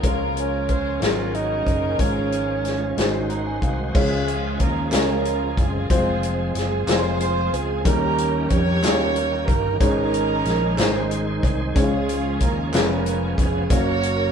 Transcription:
Already playing: F4 A#4
0.02 C#2 C#3 F3 G#3 A#3 C#4 F4 G#4 A#4, kick, closed hi-hat
0.37 C#4, closed hi-hat
0.69 C5, kick, closed hi-hat
1.00 G#1 G#2 F#3 G#3 A#3 C#4 F4 G#4 A4 A#4, snare, closed hi-hat
1.08 A#4
1.34 D#4, closed hi-hat
1.66 F#1, kick, closed hi-hat
1.98 G#1 G#2 F3 G#3 C#4 F4 G#4 C#5, kick, closed hi-hat
2.32 closed hi-hat
2.65 snare, closed hi-hat
2.96 G#1 G#2 D#3 G#3 D#4 F#4 C5, snare, closed hi-hat
3.30 A#5, closed hi-hat
3.46 G#5
3.62 C2 F5, kick, closed hi-hat
3.94 C#2 C#3 F3 G#3 C#4 F4 G#4 C#5, kick, crash
3.99 G#4
4.28 closed hi-hat
4.60 D#2 A#4, kick, closed hi-hat
4.91 C#2 G#3 C#4 F4 A#4, snare, clap, closed hi-hat
4.95 A#4
5.25 closed hi-hat
5.57 F#1 C4 F4 G#4, kick, closed hi-hat
5.89 F1 F3 F#3 G#3 C4 F4 G#4 C5, kick, closed hi-hat
5.96 G#3
6.23 closed hi-hat
6.55 F#1 G#4, snare, closed hi-hat
6.87 F1 G#3 C4 F4 G#4 A#4 C5, snare, clap, closed hi-hat
7.20 closed hi-hat
7.53 C#2 G#4, closed hi-hat
7.85 D#2 D#3 G3 A#3 C#4 D#4 G4 A#4, kick, closed hi-hat
8.18 closed hi-hat
8.50 F2 G4 A#4 C#5, kick, closed hi-hat
8.82 D#2 G3 C#4 D#4 F4, snare, clap, closed hi-hat
9.16 closed hi-hat
9.48 G1 A#4, kick, closed hi-hat
9.80 G#1 G#2 D#3 G#3 C#4 D#4 G#4 A#4 C#5, kick, closed hi-hat
10.14 closed hi-hat
10.45 A#1, snare, closed hi-hat
10.77 G#1 G#2 D#3 G#3 D#4 G#4 C5, snare, clap, closed hi-hat
11.11 closed hi-hat
11.43 C2, kick, closed hi-hat
11.75 C#2 C#3 F3 G#3 C#4 D#4 F4 G#4 C#5, kick, closed hi-hat
11.83 F4
12.09 closed hi-hat
12.40 D#2 A#4, kick, closed hi-hat
12.73 F1 F3 G#3 B3 C#4 F4 G4 A#4, snare, clap, closed hi-hat
12.82 G#4
13.06 closed hi-hat
13.38 F1 G#4, kick, closed hi-hat
13.70 F#1 F#3 A#3 C#4 F#4 A#4 C#5, kick, closed hi-hat
14.03 closed hi-hat

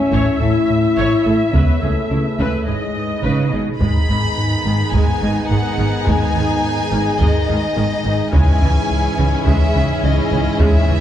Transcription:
Already playing: A3 C#4 E4 A4 C#5 E5
0.12 A1 A2 C#5, taiko
0.40 A1 A2 E4 A4
0.70 A2
0.97 A1 A2 C#5
1.26 A1 A2 A3 A4
1.52 C#2 C#3 B3 G#4 B4, taiko
1.80 C#2 C#3 A3 G#4
2.11 C#2 C#3 E4
2.39 C#2 C#3 B4, taiko
2.67 G#1 G#2 G#3 D#4 G#4 D#5
2.96 G#2
3.24 G#1 G#2 C#3 B4
3.53 G#1 B2 G#3 G#4
3.80 G#1 G#2 D#3 G#3 B3 D#4 G#4 D#5 B5, taiko
4.09 G#1 G#2 D#3
4.38 G#2
4.65 G#1 G#2 D#3
4.93 G#1 G#2 G#3 G#5, taiko
5.22 G#1 G#2 D#3 G#3
5.50 G#1 G#2 D#3 F#5
5.78 G#1 G#2 D#3
6.06 G#1 G#2 G#3 G#5, taiko
6.35 G#1 G#2 D#3
6.64 G#2
6.91 G#1 G#2 D#3
7.19 G#1 G#2 G#3 D#5, taiko
7.48 G#1 G#2 D#3 G#3
7.76 G#1 G#2 D#3
8.04 G#1 G#2 D#3
8.32 C#2 G#2 C#3 E3 G#3 C#4 E4 G#4 G#5, taiko
8.62 C#2 C#3 E3
8.91 C#2
9.18 C#2 C#3 E3
9.46 C#2 C#3 G#3 E5, taiko
9.75 C#2 C#3 E3
10.03 C#2 C#3 D#5
10.31 C#2 C#3 E3
10.59 C#2 C#3 G#3 E5, taiko
10.88 C#2 C#3 E3

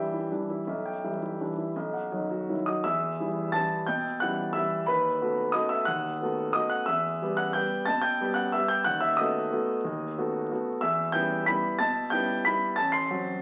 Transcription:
Already playing: G2 E3 G3 E5 G5
0.14 E4
0.31 E3 G3 D4
0.50 E4
0.67 B1 E5
0.85 G5
1.04 E3 G3 E5
1.22 E4
1.41 E3 G3 D4
1.58 E4
1.76 B1 D#5
1.93 F#5
2.12 D#3 F#3 D#5
2.31 F#4
2.49 D#3 F#3 E4
2.66 F#4 D#5 D#6
2.84 E2 E5 E6
3.20 E3 G3 E4
3.52 E3 G3 E4 A5 A6
3.86 B2 G5 G6
4.20 E3 G3 E4 F#5 F#6
4.53 E3 G3 E4 E5 E6
4.86 D#2 B4 B5
5.21 A3 B3 F#4
5.52 A3 B3 F#4 D#5 D#6
5.69 E5 E6
5.85 D#2 F#5 F#6
6.21 A3 B3 F#4
6.53 A3 B3 F#4 D#5 D#6
6.70 F#5 F#6
6.86 E2 E5 E6
7.22 G3 B3 G4
7.37 F#5 F#6
7.53 G3 B3 G4 G5 G6
7.85 B2 A5 A6
8.02 G5 G6
8.21 G3 B3 G4
8.34 F#5 F#6
8.52 G3 B3 G4 E5 E6
8.68 G5 G6
8.84 D#2 F#5 F#6
9.01 E5 E6
9.17 A3 B3 F#4 D#5 D#6
9.52 A3 B3 F#4
9.85 D#2
10.18 A3 B3 F#4
10.51 A3 B3 F#4
10.81 E2 E5 E6
11.12 G3 B3 E4 G5 G6
11.46 G3 B3 E4 B5 B6
11.79 B2 A5 A6
12.10 G3 B3 E4 G5 G6
12.45 G3 B3 E4 B5 B6
12.76 A1 A5 A6
12.92 C6 C7
13.10 F#3 C4 F#4

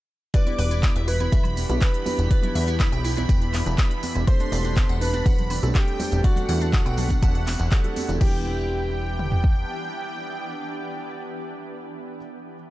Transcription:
0.34 E3 G3 B3 D4 E4 F#4 G4 B4 D5 D6 B6, kick, closed hi-hat, tambourine
0.47 E4, closed hi-hat, high conga
0.58 E1 B4, open hi-hat, tambourine
0.71 E4, closed hi-hat, tambourine
0.83 E4, kick, clap, closed hi-hat, tambourine, high conga, high woodblock
0.96 E1 E5, closed hi-hat
1.08 E4 B4 B5, open hi-hat, tambourine
1.20 E4, closed hi-hat, tambourine, high conga
1.32 E1 E5, kick, closed hi-hat, tambourine
1.43 closed hi-hat, low conga, high woodblock
1.57 open hi-hat, tambourine, high conga
1.69 B1 G3 B3 D4 E4 B4, closed hi-hat, tambourine
1.81 B4 B5, kick, clap, closed hi-hat, tambourine
1.94 closed hi-hat
2.06 G3 B3 D4 E4 B4, open hi-hat, tambourine, high conga
2.19 E1, closed hi-hat, tambourine, high woodblock
2.30 G3 B3 D4 E4 B4 D5 B5, kick, closed hi-hat, tambourine
2.43 E4, closed hi-hat, high conga, low conga
2.55 E2 E5, open hi-hat, tambourine
2.67 E4, closed hi-hat, tambourine
2.80 E4, kick, clap, closed hi-hat, tambourine, high conga, high woodblock
2.92 B1 G5, closed hi-hat
3.05 E4, open hi-hat, tambourine
3.16 E4, closed hi-hat, tambourine, high conga
3.29 E1 G5, kick, closed hi-hat, tambourine
3.42 closed hi-hat
3.53 clap, open hi-hat, tambourine, high conga, high woodblock
3.66 E1, closed hi-hat, tambourine
3.78 G3 B3 D4 E4 B4, kick, clap, closed hi-hat, tambourine
3.91 closed hi-hat
4.03 open hi-hat, tambourine, high conga
4.15 E1, closed hi-hat, tambourine, high woodblock
4.27 G3 A3 C4 D4 A4 C5 C6, kick, closed hi-hat, tambourine
4.40 D4, closed hi-hat, high conga
4.52 E1 D5, open hi-hat, tambourine
4.65 D4, closed hi-hat, tambourine
4.76 D4, kick, clap, closed hi-hat, high conga
4.89 E1 F#5, closed hi-hat, high woodblock
5.01 D4 B4 B5, open hi-hat, tambourine
5.14 D4, closed hi-hat, tambourine, high conga
5.26 E1 F#5, kick, closed hi-hat, tambourine
5.39 closed hi-hat, low conga
5.50 open hi-hat, tambourine, high conga, high woodblock
5.63 B1 G3 A3 C4 D4 A4, closed hi-hat, tambourine
5.75 G4 G5, kick, clap, closed hi-hat
5.88 closed hi-hat
5.99 G3 A3 C4 D4 A4, open hi-hat, tambourine, high conga
6.12 E1, closed hi-hat, tambourine
6.24 G3 A3 C4 E4 F#4 A4 D5 F#5, kick, closed hi-hat, tambourine, high woodblock
6.36 D4, closed hi-hat, high conga, low conga
6.49 E2 F#5, open hi-hat, tambourine
6.61 D4, closed hi-hat, tambourine
6.73 D4, kick, clap, closed hi-hat, tambourine, high conga
6.86 B1 G5, closed hi-hat, high woodblock
6.97 D4, open hi-hat, tambourine, low conga
7.09 D4, kick, closed hi-hat, tambourine, high conga
7.22 E1 A5, kick, closed hi-hat, tambourine
7.35 closed hi-hat
7.47 clap, open hi-hat, tambourine, high conga
7.59 E1, closed hi-hat, tambourine, high woodblock
7.72 G3 A3 C4 D4 A4, kick, clap, closed hi-hat
7.84 G3 A3 C4 D4 A4, closed hi-hat
7.96 open hi-hat, tambourine, high conga
8.09 E1, closed hi-hat, tambourine
8.21 E1 E3 G3 B3 D4 E4 G4 B4 G5, kick, crash
9.19 mid tom
9.32 floor tom
9.44 kick

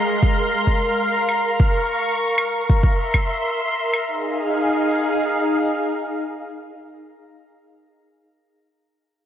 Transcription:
Already playing: G#3 A#4 F5 A#5 C6
0.23 kick
0.67 kick
1.29 claves
1.60 C#6, kick
2.38 claves
2.70 kick
2.83 E5 C6, kick
3.14 kick, claves
3.94 claves
4.07 D#4 G#4 F5

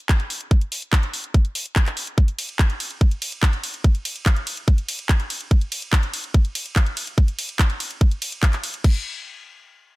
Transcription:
0.09 kick, clap, closed hi-hat
0.20 closed hi-hat
0.30 open hi-hat
0.41 closed hi-hat
0.51 kick, closed hi-hat
0.61 closed hi-hat
0.72 open hi-hat
0.82 closed hi-hat
0.93 kick, clap, closed hi-hat
1.03 closed hi-hat
1.14 open hi-hat
1.24 closed hi-hat
1.34 kick, closed hi-hat
1.45 closed hi-hat
1.55 open hi-hat
1.66 closed hi-hat
1.76 kick, clap, closed hi-hat
1.86 clap, closed hi-hat
1.97 open hi-hat
2.07 closed hi-hat
2.18 kick, closed hi-hat
2.28 closed hi-hat
2.39 open hi-hat, ride
2.49 closed hi-hat
2.59 kick, clap, closed hi-hat
2.70 closed hi-hat
2.80 open hi-hat, ride
2.91 closed hi-hat
3.01 kick, closed hi-hat
3.11 closed hi-hat
3.22 open hi-hat, ride
3.32 closed hi-hat
3.43 kick, clap, closed hi-hat
3.53 closed hi-hat
3.64 open hi-hat, ride
3.74 closed hi-hat
3.84 kick, closed hi-hat
3.95 closed hi-hat
4.05 open hi-hat, ride
4.16 closed hi-hat
4.26 kick, clap, closed hi-hat
4.36 closed hi-hat
4.47 open hi-hat, ride
4.57 closed hi-hat
4.68 kick, closed hi-hat
4.78 closed hi-hat
4.89 open hi-hat, ride
4.99 closed hi-hat
5.09 kick, clap, closed hi-hat
5.20 closed hi-hat
5.30 open hi-hat, ride
5.41 closed hi-hat
5.51 kick, closed hi-hat
5.61 closed hi-hat
5.72 open hi-hat, ride
5.82 closed hi-hat
5.93 kick, clap, closed hi-hat
6.03 closed hi-hat
6.14 open hi-hat, ride
6.24 closed hi-hat
6.34 kick, closed hi-hat
6.45 closed hi-hat
6.55 open hi-hat, ride
6.66 closed hi-hat
6.76 kick, clap, closed hi-hat
6.86 closed hi-hat
6.97 open hi-hat, ride
7.07 closed hi-hat
7.18 kick, closed hi-hat
7.28 closed hi-hat
7.39 open hi-hat, ride
7.49 closed hi-hat
7.59 kick, clap, closed hi-hat
7.70 closed hi-hat
7.80 open hi-hat, ride
7.91 closed hi-hat
8.01 kick, closed hi-hat
8.11 closed hi-hat
8.22 open hi-hat, ride
8.32 closed hi-hat
8.43 kick, clap, closed hi-hat
8.53 clap, closed hi-hat
8.64 open hi-hat, ride
8.74 closed hi-hat
8.84 kick, crash

